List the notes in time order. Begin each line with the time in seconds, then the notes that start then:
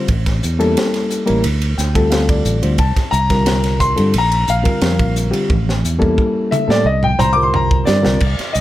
0.08 A1, kick, ride
0.26 kick, snare, ride
0.43 E2, hi-hat pedal
0.59 G3 A#3 C#4 E4 A4, ride
0.77 snare, ride
0.94 snare, ride
1.10 hi-hat pedal
1.26 A1 G3 A#3 C#4 E4 A#4, ride
1.44 D2, ride
1.62 ride
1.78 D2 G5, snare, hi-hat pedal
1.94 D3 G3 C4 F4 A4, kick, ride
2.10 F5, snare, ride
2.29 D5, kick, ride
2.45 A1, hi-hat pedal
2.62 D2 D3 G3 C4 F4 C5, ride
2.78 C2 A5, kick, ride
2.96 kick, snare, ride
3.11 C2 A#5, hi-hat pedal
3.30 D3 G3 C4 F4 A#4, kick, snare, ride
3.46 snare, ride
3.64 snare, ride
3.80 C6, kick, hi-hat pedal
3.96 G2 D3 G3 C4 F4 A4, ride
4.14 A#1, ride
4.18 A#5
4.32 ride
4.48 A#1 F5, hi-hat pedal
4.62 D3 G3 C4 F4 A#4, kick, ride
4.81 F2, snare, ride
4.99 A#1, kick, ride
5.16 hi-hat pedal
5.31 D3 G3 C4 F4 G4, ride
5.50 A1, kick, high tom
5.69 snare
5.84 E2, hi-hat pedal
5.99 G3 A#3 C#4 E4 A4, kick
6.18 kick
6.51 E5, hi-hat pedal, mid tom
6.67 A2 G3 A#3 C#4 E4 A4 D5, snare
6.85 C2 D#5
7.03 G5, mid tom
7.19 C2 C5 A#5, hi-hat pedal, mid tom
7.33 D3 G3 C4 F4 A#4 D6
7.43 C6
7.54 A#5, floor tom
7.71 kick
7.85 G2 D5, snare, hi-hat pedal
8.02 D3 G3 C4 F4 A#4, snare
8.06 C2
8.20 C2, kick, crash
8.39 muted fingered electric bass stroke, snare, ride
8.53 C2 D#5, hi-hat pedal